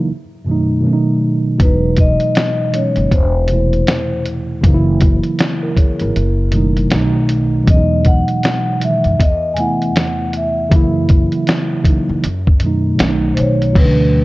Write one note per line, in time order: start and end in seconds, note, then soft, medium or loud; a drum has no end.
0.00 0.11 E3 medium
0.00 0.10 F#3 medium
0.00 0.10 A#3 loud
0.00 0.10 E4 loud
0.44 0.83 F#2 medium
0.44 0.79 B2 medium
0.44 0.80 D#3 medium
0.48 0.82 F#3 medium
0.48 0.84 A3 medium
0.48 0.87 D#4 medium
0.80 1.49 B2 medium
0.80 1.50 D#3 medium
0.80 1.51 F#3 medium
0.85 1.52 A3 medium
0.85 0.93 C#4 medium
0.93 1.56 D#4 loud
1.58 2.15 E1 medium
1.58 2.60 B2 medium
1.58 2.60 E3 medium
1.58 2.61 F#3 medium
1.58 2.00 B4 medium
1.58 kick loud
1.58 closed hi-hat medium
1.63 2.62 G#3 medium
1.63 2.63 D#4 loud
1.97 2.77 D#5 loud
1.97 kick medium
1.97 closed hi-hat medium
2.20 closed hi-hat soft
2.35 snare loud
2.35 closed hi-hat medium
2.70 3.10 B2 medium
2.70 3.11 E3 medium
2.70 3.12 F#3 medium
2.70 closed hi-hat medium
2.75 3.12 G#3 medium
2.75 3.13 C#4 medium
2.75 3.14 C#5 medium
2.96 3.10 F#1 medium
2.96 closed hi-hat soft
3.11 3.80 E1 loud
3.11 4.22 C5 medium
3.11 kick medium
3.11 closed hi-hat medium
3.47 4.49 E2 medium
3.47 4.49 C3 medium
3.47 4.50 E3 medium
3.47 4.51 A3 medium
3.47 closed hi-hat medium
3.52 4.51 B2 medium
3.52 4.52 E4 medium
3.73 closed hi-hat soft
3.87 snare loud
3.87 closed hi-hat medium
4.26 closed hi-hat medium
4.61 5.18 F#1 loud
4.61 5.63 C#3 loud
4.61 5.64 E3 loud
4.61 5.65 F#3 medium
4.61 kick loud
4.61 closed hi-hat medium
4.66 5.66 A#3 loud
4.66 4.74 D#4 medium
4.74 5.45 E4 loud
5.01 kick medium
5.01 closed hi-hat medium
5.23 closed hi-hat soft
5.39 snare loud
5.39 closed hi-hat medium
5.63 5.77 E4 medium
5.63 5.77 A#4 medium
5.77 6.00 G#4 medium
5.77 6.00 C#5 medium
5.77 kick medium
5.77 closed hi-hat medium
6.00 6.14 G#1 medium
6.00 6.37 E4 medium
6.00 6.37 A#4 medium
6.00 closed hi-hat soft
6.16 6.84 F#1 medium
6.16 closed hi-hat medium
6.50 6.90 F#2 medium
6.50 6.87 B2 medium
6.50 6.89 D#3 medium
6.50 closed hi-hat medium
6.54 6.90 F#3 medium
6.54 6.92 A3 medium
6.54 6.93 D#4 medium
6.77 closed hi-hat soft
6.88 7.57 B2 medium
6.88 7.58 D#3 medium
6.88 7.59 F#3 medium
6.88 snare loud
6.88 closed hi-hat medium
6.93 7.60 B1 loud
6.93 7.60 A3 medium
6.93 7.60 D#4 loud
7.29 closed hi-hat medium
7.64 8.66 B2 medium
7.64 8.67 E3 medium
7.64 8.68 F#3 medium
7.64 kick loud
7.64 closed hi-hat medium
7.68 8.22 E2 loud
7.68 8.69 G#3 medium
7.68 7.77 C#4 medium
7.68 8.08 D#5 medium
7.77 8.73 D#4 loud
8.05 8.78 F#5 loud
8.05 kick medium
8.05 closed hi-hat medium
8.28 closed hi-hat soft
8.43 snare loud
8.43 closed hi-hat medium
8.79 9.18 B2 medium
8.79 9.19 E3 medium
8.79 9.20 F#3 medium
8.79 closed hi-hat medium
8.84 9.22 D#3 medium
8.84 9.21 G#3 medium
8.84 9.22 E5 medium
9.04 9.18 F#2 medium
9.04 closed hi-hat soft
9.20 9.88 E2 loud
9.20 9.54 D#5 medium
9.20 kick medium
9.20 closed hi-hat medium
9.54 10.56 E2 medium
9.54 10.57 C3 medium
9.54 10.58 E3 medium
9.54 9.58 G#5 medium
9.54 closed hi-hat medium
9.58 10.58 A3 medium
9.58 10.59 B3 medium
9.58 10.60 E4 medium
9.58 10.31 F#5 loud
9.82 closed hi-hat soft
9.96 snare loud
9.96 closed hi-hat medium
10.33 10.71 E5 medium
10.33 closed hi-hat medium
10.69 11.26 F#2 loud
10.69 11.71 C#3 loud
10.69 11.72 E3 loud
10.69 11.72 F#3 loud
10.69 kick loud
10.69 closed hi-hat medium
10.74 11.73 A#3 loud
10.74 11.74 E4 loud
11.09 kick medium
11.09 closed hi-hat medium
11.32 closed hi-hat soft
11.47 snare loud
11.47 closed hi-hat medium
11.83 12.22 C#3 medium
11.83 12.23 E3 medium
11.83 12.24 F#3 medium
11.83 kick medium
11.83 closed hi-hat medium
11.88 12.25 A#3 medium
11.88 12.25 D#4 medium
12.09 12.22 F#2 medium
12.24 12.92 F#2 medium
12.24 closed hi-hat medium
12.47 kick medium
12.60 12.99 F#2 medium
12.60 12.94 B2 medium
12.60 12.95 D#3 medium
12.60 12.97 F#3 medium
12.60 closed hi-hat medium
12.65 12.99 A3 medium
12.65 13.02 D#4 medium
12.95 13.64 B2 medium
12.95 13.65 D#3 medium
12.95 13.66 F#3 medium
12.95 closed hi-hat medium
13.00 13.34 B1 loud
13.00 13.67 A3 medium
13.00 13.08 C#4 medium
13.00 snare loud
13.08 13.71 D#4 loud
13.34 13.39 C5 medium
13.34 closed hi-hat medium
13.38 13.72 B1 medium
13.38 13.74 C#5 medium
13.62 closed hi-hat soft
13.72 14.24 D2 loud
13.72 14.24 B2 medium
13.72 14.24 E3 medium
13.72 14.24 F#3 medium
13.72 kick loud
13.72 crash medium
13.77 14.24 A3 medium
13.77 13.85 C#4 medium
13.77 14.24 B4 medium
13.85 14.24 D4 medium